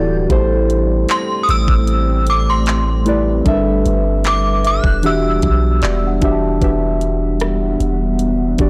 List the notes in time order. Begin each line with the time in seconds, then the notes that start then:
Already playing: D1 E3 G3 B3 D4 E4 F#4 G4 A4 D5 F#5
0.28 A1 A3 C4 E4 G4 A4 C5, kick, closed hi-hat
0.70 closed hi-hat
1.09 C6, clap, closed hi-hat
1.43 D#6
1.49 A1 E6, closed hi-hat
1.68 A1, kick
1.87 closed hi-hat
2.27 D6, closed hi-hat
2.50 C6
2.66 clap, closed hi-hat
3.05 A3 E4 G4 B4 D5, closed hi-hat
3.44 G1 G3 D4 E4 A4 A#4 B4 E5, kick, closed hi-hat
3.54 B4
3.86 G1, closed hi-hat
4.24 D6, clap, closed hi-hat
4.64 E5 F#6, closed hi-hat
4.84 E1, kick
5.03 E3 G3 B3 D4 F#4 G4 E5 F#5 E6, closed hi-hat
5.42 B1, kick, closed hi-hat
5.82 E1 D5, clap, closed hi-hat
6.07 F#5
6.21 E1 E3 D4 F#4 G4 E5, kick, closed hi-hat
6.32 A5
6.61 E1 E3 G3 B3 D4 F#4 G4 B4 E5 F#5, kick, closed hi-hat
7.01 closed hi-hat
7.40 cross-stick, closed hi-hat
7.80 E1, closed hi-hat
8.19 closed hi-hat
8.58 E1 E3 D4 F#4 G4 D5, kick, closed hi-hat